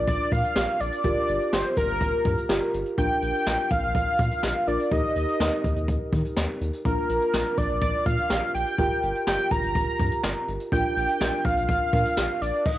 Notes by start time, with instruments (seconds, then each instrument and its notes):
Already playing: synth keys D4 F4 A#4
0.08 analog synth bass A#1, analog synth lead D5, kick, closed hi-hat
0.32 analog synth bass A#2, analog synth lead F5, kick, closed hi-hat
0.44 closed hi-hat
0.56 analog synth bass A#1, snare
0.80 analog synth bass A#1, analog synth lead D5, closed hi-hat
0.92 closed hi-hat
1.04 analog synth bass G1, synth keys F4 G4 A#4, kick, closed hi-hat
1.29 analog synth bass G1, closed hi-hat
1.41 closed hi-hat
1.53 analog synth bass G1, analog synth lead C5, snare
1.77 analog synth bass G1, analog synth lead A#4, kick, closed hi-hat
1.89 analog synth bass G1, closed hi-hat
2.01 analog synth bass G1, kick, closed hi-hat
2.25 analog synth bass G2, kick, closed hi-hat
2.37 closed hi-hat
2.49 analog synth bass G1, synth keys F4 G4 A#4, snare
2.74 analog synth bass G1, closed hi-hat
2.86 closed hi-hat
2.98 analog synth bass A#1, synth keys D4 F4 A#4, analog synth lead G5, kick, closed hi-hat
3.22 analog synth bass A#1, closed hi-hat
3.34 closed hi-hat
3.46 analog synth bass A#1, snare
3.70 analog synth bass A#1, analog synth lead F5, kick, closed hi-hat
3.82 analog synth bass A#1, closed hi-hat
3.94 analog synth bass A#1, kick, closed hi-hat
4.19 analog synth bass A#2, kick, closed hi-hat
4.31 closed hi-hat
4.43 analog synth bass A#1, snare
4.67 analog synth bass A#1, synth keys D4 F4 A#4, analog synth lead D5, closed hi-hat
4.79 closed hi-hat
4.91 analog synth bass D#2, synth keys D#4 G4 A#4, analog synth lead D#5, kick, closed hi-hat
5.16 analog synth bass D#2, closed hi-hat
5.28 closed hi-hat
5.40 analog synth bass D#2, snare
5.64 analog synth bass D#2, kick, closed hi-hat
5.76 analog synth bass D#2, closed hi-hat
5.88 analog synth bass D#2, kick, closed hi-hat
6.12 analog synth bass D#3, kick, closed hi-hat
6.24 closed hi-hat
6.36 analog synth bass D#2, snare
6.61 analog synth bass D#2, closed hi-hat
6.73 closed hi-hat
6.85 analog synth bass A#1, synth keys D4 F4 A#4, analog synth lead A#4, kick, closed hi-hat
7.09 analog synth bass A#1, closed hi-hat
7.22 closed hi-hat
7.33 analog synth bass A#1, snare
7.58 analog synth bass A#1, analog synth lead D5, kick, closed hi-hat
7.70 analog synth bass A#1, closed hi-hat
7.82 analog synth bass A#1, analog synth lead D5, kick, closed hi-hat
8.06 analog synth bass A#2, analog synth lead F5, kick, closed hi-hat
8.18 closed hi-hat
8.30 analog synth bass A#1, snare
8.54 analog synth bass A#1, analog synth lead G5, closed hi-hat
8.66 closed hi-hat
8.79 analog synth bass G1, synth keys F4 G4 A#4, kick, closed hi-hat
9.03 analog synth bass G1, closed hi-hat
9.15 closed hi-hat
9.27 analog synth bass G1, analog synth lead G5, snare
9.51 analog synth bass G1, analog synth lead A#5, kick, closed hi-hat
9.63 analog synth bass G1, closed hi-hat
9.75 analog synth bass G1, kick, closed hi-hat
10.00 analog synth bass G2, kick, closed hi-hat
10.12 closed hi-hat
10.23 analog synth bass G1, snare
10.48 analog synth bass G1, closed hi-hat
10.60 closed hi-hat
10.72 analog synth bass A#1, synth keys D4 F4 A#4, analog synth lead G5, kick, closed hi-hat
10.96 analog synth bass A#1, closed hi-hat
11.09 closed hi-hat
11.21 analog synth bass A#1, snare
11.45 analog synth bass A#1, analog synth lead F5, kick, closed hi-hat
11.57 analog synth bass A#1, closed hi-hat
11.69 analog synth bass A#1, kick, closed hi-hat
11.93 analog synth bass A#2, synth keys D4 F4 A#4, kick, closed hi-hat
12.05 closed hi-hat
12.17 analog synth bass A#1, snare
12.41 analog synth bass A#1, analog synth lead D5, closed hi-hat
12.53 closed hi-hat
12.66 analog synth lead D#5, kick, crash